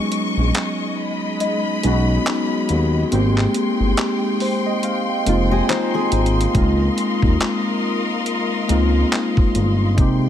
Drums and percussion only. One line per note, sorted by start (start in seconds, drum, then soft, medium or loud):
0.12 closed hi-hat medium
0.55 clap loud
0.55 closed hi-hat medium
1.40 closed hi-hat medium
1.83 closed hi-hat medium
2.26 clap loud
2.26 closed hi-hat medium
2.69 closed hi-hat medium
3.12 closed hi-hat medium
3.38 clap medium
3.54 closed hi-hat medium
3.97 clap loud
3.97 closed hi-hat medium
4.40 open hi-hat soft
4.83 closed hi-hat medium
5.26 closed hi-hat medium
5.69 clap loud
5.69 closed hi-hat medium
6.12 closed hi-hat medium
6.12 open hi-hat medium
6.26 closed hi-hat medium
6.41 closed hi-hat medium
6.55 kick loud
6.55 closed hi-hat medium
6.98 closed hi-hat medium
7.22 kick medium
7.41 clap loud
7.41 closed hi-hat medium
8.26 closed hi-hat medium
8.69 closed hi-hat medium
9.12 clap loud
9.12 closed hi-hat medium
9.37 kick medium
9.55 closed hi-hat medium
9.98 kick loud
9.98 closed hi-hat medium